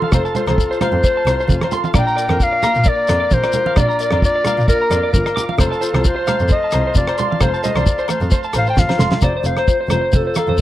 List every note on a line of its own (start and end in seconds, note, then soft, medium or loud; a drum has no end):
0.00 0.11 F2 medium
0.00 0.10 A3 medium
0.00 0.11 C4 medium
0.00 0.36 F4 medium
0.00 0.10 A4 medium
0.00 0.47 A4 medium
0.00 5.55 F5 medium
0.00 0.10 F5 medium
0.00 1.92 A5 medium
0.00 1.92 C6 medium
0.00 high conga medium
0.12 0.21 F1 loud
0.12 0.57 C4 medium
0.12 0.22 C5 medium
0.12 muted nylon-string guitar stroke medium
0.12 kick medium
0.12 cross-stick medium
0.12 low conga medium
0.12 low agogo medium
0.12 shekere medium
0.25 0.32 A5 medium
0.25 shekere soft
0.35 1.50 F4 medium
0.35 0.44 C5 medium
0.35 closed hi-hat soft
0.35 low conga medium
0.35 shekere medium
0.47 0.55 C2 medium
0.47 0.79 A4 medium
0.47 0.55 C5 medium
0.47 cross-stick medium
0.47 high conga medium
0.47 low agogo medium
0.47 shekere soft
0.58 1.92 C4 medium
0.58 kick medium
0.58 shekere medium
0.71 0.78 C5 medium
0.71 shekere soft
0.81 1.93 A3 medium
0.81 1.68 C5 medium
0.81 0.90 F5 medium
0.81 cross-stick medium
0.81 closed hi-hat soft
0.81 high conga medium
0.81 low conga medium
0.81 low agogo medium
0.92 1.00 F2 medium
1.04 1.72 A4 medium
1.04 1.13 C5 medium
1.04 kick medium
1.04 shekere medium
1.17 1.24 A5 medium
1.26 1.34 C2 medium
1.26 1.36 C5 medium
1.26 cross-stick medium
1.26 closed hi-hat soft
1.26 low agogo medium
1.26 shekere medium
1.40 1.47 C5 medium
1.40 shekere soft
1.49 1.57 F1 medium
1.49 1.95 F2 medium
1.49 3.32 F4 medium
1.49 kick medium
1.49 high conga medium
1.49 shekere medium
1.61 1.70 C5 medium
1.61 cross-stick medium
1.61 high conga medium
1.61 low agogo medium
1.72 1.93 A4 medium
1.72 1.81 C6 medium
1.72 closed hi-hat soft
1.72 low conga medium
1.72 shekere medium
1.84 1.92 F5 medium
1.84 high conga medium
1.84 shekere soft
1.94 2.02 A#1 medium
1.94 3.31 A#2 medium
1.94 2.40 D4 medium
1.94 2.03 D5 medium
1.94 2.44 G5 loud
1.94 5.56 A#5 medium
1.94 5.55 D6 medium
1.94 kick loud
1.94 cross-stick medium
1.94 low conga medium
1.94 low agogo medium
1.94 shekere medium
2.07 2.14 A#5 medium
2.07 shekere soft
2.17 2.86 A#4 medium
2.17 2.25 D5 medium
2.17 closed hi-hat soft
2.17 shekere medium
2.29 2.37 F2 medium
2.29 2.37 A#4 medium
2.29 cross-stick medium
2.29 high conga medium
2.29 low agogo medium
2.40 3.74 D4 medium
2.40 2.90 F5 loud
2.40 kick medium
2.40 shekere medium
2.53 muted clean electric guitar stroke medium
2.62 3.74 A#3 medium
2.62 2.72 A#5 medium
2.62 cross-stick medium
2.62 closed hi-hat soft
2.62 low conga medium
2.62 low agogo medium
2.62 shekere medium
2.75 2.83 A#2 medium
2.75 shekere soft
2.84 3.52 A#4 medium
2.84 2.94 D5 medium
2.84 kick medium
2.84 shekere medium
2.88 3.35 D5 loud
3.08 3.17 F2 medium
3.08 muted clean electric guitar stroke medium
3.08 cross-stick medium
3.08 closed hi-hat medium
3.08 low agogo medium
3.08 shekere medium
3.20 3.28 D5 medium
3.31 3.40 A#1 medium
3.31 3.77 F2 medium
3.31 4.71 F4 medium
3.31 3.78 C5 medium
3.31 kick medium
3.31 high conga medium
3.31 shekere medium
3.43 3.51 D5 medium
3.43 cross-stick medium
3.43 low agogo medium
3.43 shekere soft
3.53 3.74 A#4 medium
3.53 closed hi-hat soft
3.53 low conga medium
3.53 shekere medium
3.66 3.74 F5 medium
3.66 high conga medium
3.76 3.84 A#1 medium
3.76 5.13 A#2 medium
3.76 4.22 D4 medium
3.76 3.86 D5 medium
3.76 4.21 D5 medium
3.76 kick medium
3.76 cross-stick medium
3.76 low conga medium
3.76 low agogo medium
3.76 shekere medium
3.89 3.96 A#5 medium
3.89 shekere soft
3.99 5.57 A#4 medium
3.99 4.09 D5 medium
3.99 closed hi-hat medium
3.99 shekere medium
4.11 4.20 F2 medium
4.11 4.19 D5 medium
4.11 cross-stick medium
4.11 high conga medium
4.11 low agogo medium
4.22 5.57 D4 medium
4.22 4.66 D5 loud
4.22 kick medium
4.22 shekere medium
4.36 4.42 D5 medium
4.45 5.57 A#3 medium
4.45 4.55 F5 medium
4.45 cross-stick medium
4.45 closed hi-hat soft
4.45 low conga medium
4.45 low agogo medium
4.45 shekere medium
4.58 4.66 A#2 medium
4.58 shekere soft
4.68 5.15 F4 medium
4.68 5.11 A#4 loud
4.68 4.77 D5 medium
4.68 kick medium
4.68 shekere medium
4.82 4.88 A#5 medium
4.91 4.99 F2 medium
4.91 4.99 D5 medium
4.91 cross-stick medium
4.91 closed hi-hat soft
4.91 low agogo medium
4.91 shekere medium
5.03 5.10 D5 medium
5.13 5.22 G1 medium
5.13 5.58 F2 medium
5.13 5.36 F4 medium
5.13 5.46 A#4 medium
5.13 kick medium
5.13 high conga medium
5.13 shekere loud
5.26 muted clean electric guitar stroke medium
5.26 cross-stick medium
5.26 low agogo medium
5.26 shekere soft
5.36 5.81 F4 medium
5.36 5.44 D6 medium
5.36 closed hi-hat soft
5.36 low conga medium
5.36 shekere medium
5.49 5.56 F5 medium
5.49 high conga medium
5.58 5.67 F1 loud
5.58 6.94 F2 medium
5.58 6.04 C4 medium
5.58 6.08 A4 medium
5.58 5.68 C5 medium
5.58 9.20 F5 medium
5.58 9.20 A5 medium
5.58 9.20 C6 medium
5.58 kick medium
5.58 cross-stick medium
5.58 low conga medium
5.58 low agogo medium
5.58 shekere loud
5.72 5.79 A5 medium
5.72 shekere soft
5.81 6.95 F4 medium
5.81 5.90 C5 medium
5.81 closed hi-hat soft
5.81 shekere medium
5.94 6.02 C2 loud
5.94 6.01 C5 medium
5.94 cross-stick medium
5.94 high conga medium
5.94 low agogo medium
6.04 7.40 C4 medium
6.04 6.51 C5 medium
6.04 kick medium
6.04 shekere loud
6.16 6.23 C5 medium
6.26 8.07 A3 medium
6.26 6.36 F5 medium
6.26 cross-stick medium
6.26 closed hi-hat soft
6.26 low conga medium
6.26 low agogo medium
6.26 shekere medium
6.40 6.48 F2 medium
6.40 shekere soft
6.48 7.16 A4 medium
6.48 6.58 C5 medium
6.48 6.93 D#5 loud
6.48 kick medium
6.48 shekere loud
6.64 6.71 A5 medium
6.72 6.83 C2 loud
6.72 6.82 C5 medium
6.72 cross-stick medium
6.72 closed hi-hat medium
6.72 low agogo medium
6.72 shekere medium
6.87 6.94 C5 medium
6.94 7.04 F1 medium
6.94 7.38 F2 medium
6.94 8.76 F4 medium
6.94 7.44 D5 medium
6.94 kick medium
6.94 high conga medium
6.94 shekere loud
7.07 7.15 C5 medium
7.07 cross-stick medium
7.07 low agogo medium
7.07 shekere soft
7.17 7.62 A4 medium
7.17 7.27 C6 medium
7.17 closed hi-hat medium
7.17 low conga medium
7.17 shekere medium
7.31 7.38 F5 medium
7.31 high conga medium
7.39 7.49 F1 loud
7.39 7.50 C5 medium
7.39 7.63 C5 medium
7.39 muted nylon-string guitar stroke medium
7.39 kick medium
7.39 cross-stick medium
7.39 low agogo medium
7.39 shekere loud
7.43 low conga medium
7.54 7.61 A5 medium
7.54 shekere soft
7.63 8.29 A4 medium
7.63 7.72 C5 medium
7.63 7.79 D#5 medium
7.63 closed hi-hat medium
7.63 low conga medium
7.63 shekere medium
7.76 7.84 C2 medium
7.76 7.83 C5 medium
7.76 8.10 D5 medium
7.76 cross-stick medium
7.76 high conga medium
7.76 low agogo medium
7.76 shekere soft
7.86 9.20 C4 medium
7.86 kick medium
7.86 shekere loud
7.99 8.06 C5 medium
7.99 shekere soft
8.08 9.20 A3 medium
8.08 8.21 C5 medium
8.08 muted clean electric guitar stroke medium
8.08 cross-stick medium
8.08 closed hi-hat soft
8.08 high conga medium
8.08 low agogo medium
8.08 shekere medium
8.21 8.29 F2 medium
8.21 shekere soft
8.30 8.40 C5 medium
8.30 muted nylon-string guitar stroke medium
8.30 kick medium
8.30 shekere loud
8.43 8.52 A5 medium
8.43 shekere soft
8.53 8.62 A1 loud
8.53 8.64 C5 medium
8.53 cross-stick medium
8.53 closed hi-hat medium
8.53 low agogo medium
8.53 shekere medium
8.58 8.68 F5 medium
8.66 8.75 C5 medium
8.66 8.81 G5 loud
8.66 shekere soft
8.76 8.85 G1 medium
8.76 9.20 F2 medium
8.76 9.20 F4 medium
8.76 9.13 F5 medium
8.76 kick medium
8.76 snare soft
8.76 high conga medium
8.76 shekere loud
8.89 8.96 C5 medium
8.89 snare medium
8.89 high conga medium
8.89 low agogo medium
8.89 shekere soft
8.98 9.08 F1 medium
8.98 9.19 A4 medium
8.98 9.08 C6 medium
8.98 snare medium
8.98 low conga medium
8.98 shekere medium
9.11 9.19 F5 medium
9.11 snare medium
9.11 low conga medium
9.11 shekere soft
9.21 9.31 F1 medium
9.21 10.34 F2 medium
9.21 9.88 A3 medium
9.21 9.44 C4 medium
9.21 9.67 F4 medium
9.21 9.32 C5 medium
9.21 10.61 C5 medium
9.21 9.38 D5 medium
9.21 kick medium
9.21 cross-stick medium
9.21 low conga medium
9.21 low agogo medium
9.21 shekere loud
9.37 9.43 C5 medium
9.37 9.48 D5 medium
9.44 9.52 F1 medium
9.44 10.35 C4 medium
9.44 9.91 C5 medium
9.44 9.54 F5 medium
9.44 closed hi-hat soft
9.44 shekere medium
9.57 9.65 C5 medium
9.57 cross-stick medium
9.57 low agogo medium
9.67 9.90 F4 medium
9.67 9.77 C5 medium
9.67 kick medium
9.67 shekere medium
9.81 9.88 C5 medium
9.89 9.97 F1 loud
9.89 10.61 A3 medium
9.89 10.12 F4 medium
9.89 9.99 C5 medium
9.89 10.17 C5 medium
9.89 cross-stick medium
9.89 closed hi-hat soft
9.89 high conga medium
9.89 low conga medium
9.89 low agogo medium
9.89 shekere medium
10.01 10.09 C5 medium
10.13 10.22 F1 loud
10.13 10.60 F4 medium
10.13 10.37 A4 medium
10.13 10.22 C5 medium
10.13 kick medium
10.13 high conga medium
10.13 shekere medium
10.27 10.34 C5 medium
10.35 10.61 F2 medium
10.35 10.61 C4 medium
10.35 10.61 A4 medium
10.35 10.45 F5 medium
10.35 cross-stick medium
10.35 closed hi-hat medium
10.35 high conga medium
10.35 low agogo medium
10.35 shekere medium
10.48 10.56 F2 medium
10.48 10.56 C5 medium
10.48 high conga medium
10.58 shekere loud